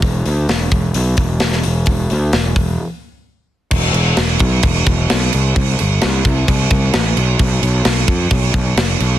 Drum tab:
CC |----------------|----------------|x-x-x-x-x-x-x-x-|x-x-x-x-x-x-x-x-|
HH |o-o-o-o-o-o-o-o-|o-o-o-o---------|----------------|----------------|
SD |----o-------oo--|----o-----------|----o-------o---|----o-------o---|
BD |o-----o---o-----|o-----o---------|o-----o-o-o-----|o-----o-o-o-----|

CC |x-x-x-x-x-x-x-x-|
HH |----------------|
SD |----o-------o---|
BD |o-----o-o-o-----|